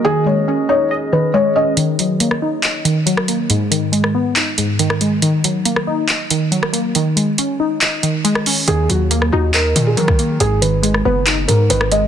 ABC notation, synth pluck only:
X:1
M:4/4
L:1/8
Q:1/4=139
K:Ebm
V:1 name="Synth pluck" clef=bass
E, A, D E e E, A, D | E, G, B, E e E, G, B, | A,, E, A, C E A,, E, A, | E, G, B, E e E, G, B, |
E, A, D E e E, A, D | E, G, B, E e E, G, B, | A,, E, A, C E A,, E, A, |]